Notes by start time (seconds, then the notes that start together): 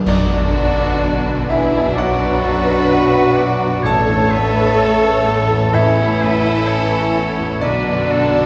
0.06 B1 B2 D3 D4 F#4 D5, concert bass drum, crash
0.32 F#2
0.56 B3
0.80 B4
1.03 D5
1.26 B4
1.49 E3 B3 E4 G#4 E5
1.72 F#2
1.95 B1 F#3 F#4 B4 D5 F#5
2.19 B3
2.41 F#2 A4
2.66 B4
2.88 B4 D5
3.13 B4
3.36 B3 D5
3.60 F#2
3.83 A1 A2 A3 A4 C#5 A5
4.08 E2
4.31 B3 B4
4.56 B4
4.78 C#4 A4 C#5
5.02 B4
5.26 B3
5.50 E2
5.72 A1 E3 E4 A4 C#5 E5
5.97 B3
6.21 E2 B4
6.43 B4
6.67 C#5
6.91 B4
7.15 B3
7.38 E2
7.60 B1 B2 D3 D4 F#4 B4 D5
7.86 F#2
8.09 B3 A4
8.31 F#4